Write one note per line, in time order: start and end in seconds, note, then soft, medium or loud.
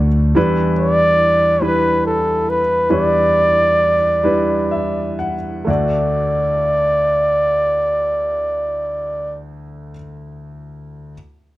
0.00 0.32 D2 soft
0.00 0.33 D2 medium
0.00 0.32 D3 soft
0.00 0.38 A3 soft
0.00 0.36 D4 soft
0.00 0.37 F#4 soft
0.00 0.37 D5 medium
0.35 2.86 E2 soft
0.35 2.86 E3 soft
0.35 1.33 G3 medium
0.35 1.33 D4 medium
0.35 1.33 E4 medium
0.35 1.33 B4 medium
0.78 1.64 D5 medium
1.60 2.60 G3 soft
1.60 2.61 D4 soft
1.60 2.61 E4 soft
1.60 2.61 B4 medium
1.60 2.05 B4 medium
2.06 2.51 A4 medium
2.49 2.92 B4 medium
2.90 5.63 E2 soft
2.90 5.63 E3 soft
2.90 3.94 G3 soft
2.90 3.94 D4 soft
2.90 3.94 E4 soft
2.90 3.94 B4 medium
2.90 5.16 D5 medium
4.23 5.34 G3 medium
4.23 5.34 D4 soft
4.23 5.34 E4 soft
4.23 5.35 B4 medium
4.71 5.16 E5 soft
5.19 5.64 F#5 soft
5.65 9.93 D2 soft
5.65 9.90 A3 soft
5.65 9.92 D4 soft
5.65 9.94 F#4 soft
5.65 9.38 D5 medium
5.70 9.96 D5 medium